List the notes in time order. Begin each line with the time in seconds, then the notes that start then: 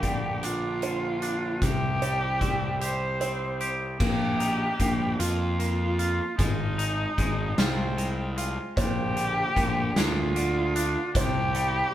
Already playing: A#1 A#2 G4
0.03 D3 D5, kick, closed hi-hat
0.43 D4 F4, closed hi-hat
0.82 D3 C5, closed hi-hat
1.22 D4, closed hi-hat
1.62 C2 C3 G4, kick, closed hi-hat
2.02 G3 C5, closed hi-hat
2.41 C4 D5, kick, closed hi-hat
2.81 G4 C5, closed hi-hat
3.21 C4 C5, closed hi-hat
3.60 G4, closed hi-hat
3.99 A#1 A#3 G4, kick, crash
4.40 D#4, closed hi-hat
4.80 A#1 A#3, kick, closed hi-hat
5.19 F2 F4, closed hi-hat
5.59 A#3, closed hi-hat
5.99 F4, closed hi-hat
6.38 G#1 G#3 D#4, kick, closed hi-hat
6.78 D#4, closed hi-hat
7.18 G#1 G#3, kick, closed hi-hat
7.58 C2 C4 F4, snare, closed hi-hat
7.98 G#3, closed hi-hat
8.37 F4, closed hi-hat
8.77 A#1 A#2 G4 C5, kick, closed hi-hat
9.17 D3, closed hi-hat
9.56 A#1 D3 A#4, kick, closed hi-hat
9.96 D2 D4 F4, snare, closed hi-hat
10.36 D3 D5, closed hi-hat
10.76 D4, closed hi-hat
11.15 C2 C3 G4 C5, kick, closed hi-hat
11.55 G3, closed hi-hat